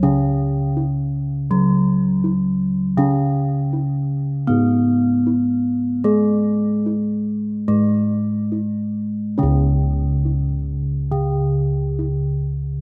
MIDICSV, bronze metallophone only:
0, 0, Header, 1, 2, 480
1, 0, Start_track
1, 0, Tempo, 738007
1, 21, Time_signature, 4, 2, 24, 8
1, 2422, Tempo, 774194
1, 3862, Tempo, 824176
1, 5302, Tempo, 867052
1, 7678, End_track
2, 0, Start_track
2, 0, Title_t, "Bronze metallophone"
2, 0, Program_c, 0, 11
2, 20, Note_on_c, 0, 49, 70
2, 979, Note_off_c, 0, 49, 0
2, 981, Note_on_c, 0, 54, 66
2, 1936, Note_on_c, 0, 49, 75
2, 1939, Note_off_c, 0, 54, 0
2, 2887, Note_on_c, 0, 59, 65
2, 2892, Note_off_c, 0, 49, 0
2, 3859, Note_off_c, 0, 59, 0
2, 3860, Note_on_c, 0, 56, 63
2, 4807, Note_off_c, 0, 56, 0
2, 4814, Note_on_c, 0, 56, 65
2, 5779, Note_off_c, 0, 56, 0
2, 5783, Note_on_c, 0, 49, 63
2, 6734, Note_off_c, 0, 49, 0
2, 6740, Note_on_c, 0, 49, 62
2, 7678, Note_off_c, 0, 49, 0
2, 7678, End_track
0, 0, End_of_file